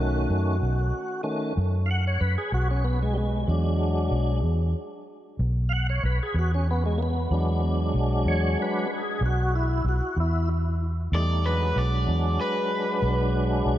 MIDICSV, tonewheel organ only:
0, 0, Header, 1, 2, 480
1, 0, Start_track
1, 0, Tempo, 636943
1, 2624, Time_signature, 12, 3, 24, 8
1, 10386, End_track
2, 0, Start_track
2, 0, Title_t, "Tonewheel organ"
2, 0, Program_c, 0, 16
2, 0, Note_on_c, 0, 51, 48
2, 0, Note_on_c, 0, 57, 46
2, 0, Note_on_c, 0, 61, 53
2, 0, Note_on_c, 0, 66, 94
2, 427, Note_off_c, 0, 51, 0
2, 428, Note_off_c, 0, 57, 0
2, 429, Note_off_c, 0, 61, 0
2, 915, Note_off_c, 0, 66, 0
2, 930, Note_on_c, 0, 51, 44
2, 934, Note_on_c, 0, 57, 44
2, 935, Note_on_c, 0, 61, 53
2, 1152, Note_off_c, 0, 51, 0
2, 1155, Note_off_c, 0, 57, 0
2, 1155, Note_off_c, 0, 61, 0
2, 1400, Note_on_c, 0, 77, 74
2, 1428, Note_off_c, 0, 77, 0
2, 1436, Note_on_c, 0, 78, 109
2, 1542, Note_off_c, 0, 78, 0
2, 1562, Note_on_c, 0, 73, 90
2, 1661, Note_on_c, 0, 71, 80
2, 1665, Note_off_c, 0, 73, 0
2, 1774, Note_off_c, 0, 71, 0
2, 1792, Note_on_c, 0, 68, 72
2, 1900, Note_off_c, 0, 68, 0
2, 1915, Note_on_c, 0, 66, 86
2, 2022, Note_off_c, 0, 66, 0
2, 2040, Note_on_c, 0, 61, 74
2, 2143, Note_on_c, 0, 59, 90
2, 2144, Note_off_c, 0, 61, 0
2, 2255, Note_off_c, 0, 59, 0
2, 2280, Note_on_c, 0, 56, 85
2, 2363, Note_on_c, 0, 55, 63
2, 2383, Note_off_c, 0, 56, 0
2, 2390, Note_off_c, 0, 55, 0
2, 2392, Note_on_c, 0, 56, 96
2, 2616, Note_off_c, 0, 56, 0
2, 2616, Note_on_c, 0, 54, 54
2, 2625, Note_on_c, 0, 56, 49
2, 2633, Note_on_c, 0, 62, 57
2, 3310, Note_off_c, 0, 54, 0
2, 3314, Note_off_c, 0, 56, 0
2, 3318, Note_off_c, 0, 62, 0
2, 4289, Note_on_c, 0, 77, 75
2, 4315, Note_off_c, 0, 77, 0
2, 4319, Note_on_c, 0, 78, 97
2, 4423, Note_off_c, 0, 78, 0
2, 4443, Note_on_c, 0, 73, 91
2, 4545, Note_off_c, 0, 73, 0
2, 4563, Note_on_c, 0, 71, 86
2, 4665, Note_off_c, 0, 71, 0
2, 4693, Note_on_c, 0, 68, 80
2, 4791, Note_off_c, 0, 68, 0
2, 4813, Note_on_c, 0, 66, 100
2, 4911, Note_off_c, 0, 66, 0
2, 4932, Note_on_c, 0, 61, 88
2, 5030, Note_off_c, 0, 61, 0
2, 5054, Note_on_c, 0, 59, 81
2, 5151, Note_off_c, 0, 59, 0
2, 5168, Note_on_c, 0, 56, 86
2, 5260, Note_on_c, 0, 58, 65
2, 5268, Note_off_c, 0, 56, 0
2, 5283, Note_off_c, 0, 58, 0
2, 5294, Note_on_c, 0, 59, 95
2, 5511, Note_on_c, 0, 54, 49
2, 5521, Note_on_c, 0, 62, 61
2, 5522, Note_on_c, 0, 56, 47
2, 5744, Note_off_c, 0, 59, 0
2, 6240, Note_on_c, 0, 73, 94
2, 6464, Note_off_c, 0, 73, 0
2, 6465, Note_off_c, 0, 56, 0
2, 6468, Note_off_c, 0, 54, 0
2, 6469, Note_off_c, 0, 62, 0
2, 6474, Note_on_c, 0, 56, 40
2, 6477, Note_on_c, 0, 54, 49
2, 6478, Note_on_c, 0, 62, 52
2, 6497, Note_on_c, 0, 71, 85
2, 6684, Note_off_c, 0, 56, 0
2, 6686, Note_off_c, 0, 54, 0
2, 6687, Note_off_c, 0, 62, 0
2, 6713, Note_off_c, 0, 71, 0
2, 6734, Note_on_c, 0, 68, 84
2, 6951, Note_off_c, 0, 68, 0
2, 6975, Note_on_c, 0, 66, 93
2, 7192, Note_off_c, 0, 66, 0
2, 7200, Note_on_c, 0, 64, 86
2, 7424, Note_off_c, 0, 64, 0
2, 7450, Note_on_c, 0, 66, 80
2, 7668, Note_off_c, 0, 66, 0
2, 7686, Note_on_c, 0, 64, 107
2, 7907, Note_off_c, 0, 64, 0
2, 8396, Note_on_c, 0, 57, 54
2, 8398, Note_on_c, 0, 63, 54
2, 8400, Note_on_c, 0, 55, 52
2, 8628, Note_off_c, 0, 57, 0
2, 8629, Note_off_c, 0, 63, 0
2, 8630, Note_off_c, 0, 55, 0
2, 8631, Note_on_c, 0, 54, 57
2, 8631, Note_on_c, 0, 56, 61
2, 8631, Note_on_c, 0, 62, 60
2, 10386, Note_off_c, 0, 54, 0
2, 10386, Note_off_c, 0, 56, 0
2, 10386, Note_off_c, 0, 62, 0
2, 10386, End_track
0, 0, End_of_file